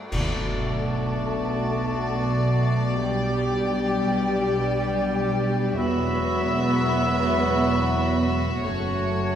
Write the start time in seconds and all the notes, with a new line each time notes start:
Already playing: A3
0.10 B1 B2 A3 D4 F#4 D5 A5, concert bass drum, crash
2.96 G3 G4 G5
3.00 G3
5.75 E1 E2 F#3 B3 F#4 E5 B5
8.63 F#1 F#2 A3 C#4 C#5 A5